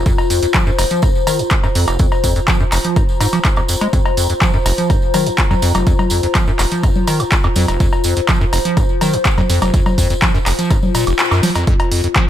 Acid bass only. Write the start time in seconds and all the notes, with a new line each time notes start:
0.06 F2
0.30 F2
0.43 F2
0.54 F3
0.67 F#2
0.79 F1
0.91 F3
1.03 F2
1.27 D#3
1.39 F2
1.64 F#2
1.75 F2
1.88 F1
2.00 F2
2.24 F2
2.36 F2
2.48 F3
2.60 F#2
2.72 F1
2.85 F3
2.96 F2
3.21 G#2
3.33 F3
3.57 F2
3.69 F2
3.81 G#3
3.93 F2
4.17 F2
4.30 F2
4.42 F3
4.54 F#2
4.66 F1
4.78 F3
4.90 F2
5.14 D#3
5.26 F2
5.51 F2
5.62 F2
5.75 F1
5.87 F2
6.11 F2
6.23 F2
6.35 F3
6.47 F#2
6.59 F1
6.72 F3
6.83 F2
7.08 D#3
7.20 F2
7.44 F2
7.56 F2
7.68 F1
7.80 F2
8.04 F2
8.17 F2
8.29 F3
8.41 F#2
8.53 F1
8.65 F3
8.77 F2
9.01 D#3
9.13 F2
9.38 F2
9.49 F2
9.62 F1
9.74 F2
9.98 F2
10.10 F2
10.22 F3
10.34 F#2
10.46 F1
10.59 F3
10.70 F2
10.95 A#2
11.07 F1
11.31 F#2
11.43 F3
11.55 F2
11.67 F2
11.91 F2
12.04 F2
12.16 F3